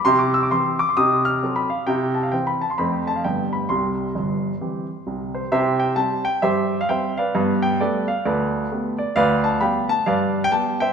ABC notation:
X:1
M:4/4
L:1/16
Q:"Swing" 1/4=132
K:C
V:1 name="Grand piano"
c' d' e' d' c'2 d' c' _e'2 f'3 b f2 | g2 a f g b a c' b g a f g2 b2 | c'12- c'2 c2 | [Gce]2 g2 a2 g2 [Gce]3 f [ceg]2 [Bdf]2- |
[Bdf]2 g2 [ABd]2 f2 [ABd]4 z2 d2 | [Bdf]2 a2 [fgb]2 a2 [Bdf]3 g a2 [ceg]2 |]
V:2 name="Grand piano"
[C,E]4 [E,CG]4 [C,_E]4 [_G,CA]4 | [C,E]4 [E,Cc]4 [F,,F,A,Cc]4 [G,,D,B,G]4 | [C,,C,]4 [G,,,G,,]4 [E,CG]4 [C,,C,]4 | [C,E]4 [G,CG]4 G,,4 [G,CG]4 |
[G,,B,]4 [A,B,G]4 D,,4 [A,B,G]4 | D,,4 [G,B,G]4 G,,4 [G,B,G]4 |]